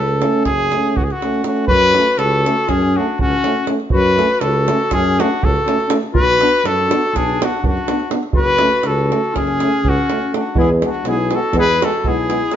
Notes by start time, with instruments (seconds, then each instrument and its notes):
Already playing: tuba C#2, trumpet A4
0.09 davul high
0.21 euphonium A3, french horn C#4, davul high
0.33 davul high
0.45 tuba F#1, trumpet G#4, davul high, davul low
0.59 davul high
0.72 euphonium A3, french horn C#4, davul high
0.86 davul high
0.96 tuba C#2, trumpet F#4, davul low
1.04 trumpet G#4
1.10 trumpet F#4, davul high
1.22 euphonium A3, french horn C#4, davul high
1.34 davul high
1.44 euphonium A3, french horn C#4, trumpet F#4, davul high
1.57 davul high
1.67 tuba F#2, clarinet F#4, trumpet B4, davul low
1.95 euphonium A3, french horn C#4, davul high
2.07 davul high
2.18 tuba C#2, clarinet F#4, trumpet A4, davul high
2.32 davul high
2.44 euphonium A3, french horn C#4, davul high
2.57 davul high
2.68 tuba F#2, clarinet C#4, trumpet G#4, davul high, davul low
2.82 davul high
2.95 euphonium A3, french horn C#4, clarinet D4, trumpet F#4
3.19 tuba C#2, clarinet C#4, trumpet F#4, davul low
3.33 davul high
3.44 euphonium A3, french horn C#4, davul high
3.56 davul high
3.67 euphonium A3, french horn C#4, davul high
3.80 davul high
3.90 tuba F#2, clarinet F#4, trumpet B4, davul low
4.16 euphonium A3, french horn C#4, davul high
4.30 davul high
4.41 tuba C#2, clarinet F#4, trumpet A4, davul high
4.55 davul high
4.68 euphonium A3, french horn C#4, davul high
4.80 davul high
4.91 tuba F#2, clarinet C#4, trumpet G#4, davul high, davul low
5.04 davul high
5.19 euphonium A3, french horn C#4, clarinet D4, trumpet F#4, davul high
5.43 tuba C#2, clarinet F#4, trumpet A4, davul low
5.56 davul high
5.66 euphonium A3, french horn C#4, davul high
5.80 davul high
5.88 euphonium A3, french horn C#4, davul high
6.03 davul high
6.13 tuba B1, clarinet F#4, trumpet B4, davul low
6.39 euphonium B3, french horn D4, davul high
6.53 davul high
6.64 tuba F#2, clarinet F#4, trumpet A4, davul high
6.78 davul high
6.88 euphonium B3, french horn D4, davul high
7.05 davul high
7.13 tuba B1, clarinet D4, trumpet G#4, davul high, davul low
7.30 davul high
7.39 euphonium B3, french horn D4, clarinet D4, davul high
7.44 trumpet F#4
7.63 tuba F#2, clarinet D4, davul low
7.67 trumpet F#4
7.77 davul high
7.88 euphonium B3, french horn D4, davul high
8.00 davul high
8.10 euphonium B3, french horn D4, davul high
8.23 davul high
8.33 tuba F#1, clarinet F#4, davul low
8.38 trumpet B4
8.47 davul high
8.58 euphonium A3, french horn C#4, davul high
8.71 davul high
8.83 tuba C#2, clarinet F#4, trumpet A4, davul high
8.98 davul high
9.09 euphonium A3, french horn C#4, davul high
9.24 davul high
9.33 tuba F#1, clarinet C#4, trumpet G#4, davul high, davul low
9.47 davul high
9.60 euphonium A3, french horn C#4, davul high
9.72 davul high
9.83 tuba C#2, clarinet C#4, davul low
9.89 trumpet F#4
9.98 davul high
10.10 euphonium A3, french horn C#4, davul high
10.22 davul high
10.31 euphonium A3, french horn C#4, clarinet D4, davul high
10.36 trumpet F#4
10.54 tuba E2, euphonium G#3, french horn B3, clarinet E4, davul low
10.59 trumpet G#4
10.81 euphonium G#3, french horn B3, davul high
10.86 clarinet D4, trumpet F#4
10.94 davul high
11.04 tuba B1, euphonium G#3, french horn B3, clarinet E4, davul high
11.09 trumpet G#4
11.30 euphonium G#3, french horn B3, davul high
11.35 clarinet F#4, trumpet A4
11.43 davul high
11.52 tuba E2, euphonium G#3, french horn B3, davul high, davul low
11.59 clarinet G#4, trumpet B4
11.68 davul high
11.81 euphonium G#3, french horn B3, clarinet F#4, trumpet A4, davul high
12.04 tuba B1, euphonium G#3, french horn B3, trumpet G#4, davul low
12.08 clarinet E4
12.17 davul high
12.28 euphonium G#3, french horn B3, davul high
12.51 euphonium G#3, french horn B3, clarinet G#4, davul high